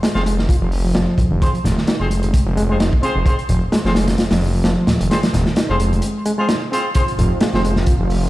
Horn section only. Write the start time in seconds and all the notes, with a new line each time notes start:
0.15 C4 F4 G#4 C5
1.41 C4 F4 G#4 C5
2.00 C4 F4 G#4 C5
2.69 C4 F4 G#4 C5
3.03 C4 F4 G#4 C5
3.26 C4 F4 G#4 C5
3.85 C4 F4 G#4 C5
5.10 C4 F4 G#4 C5
5.69 C4 F4 G#4 C5
6.38 C4 F4 G#4 C5
6.71 C4 F4 G#4 C5
6.95 C4 F4 G#4 C5
7.54 C4 F4 G#4 C5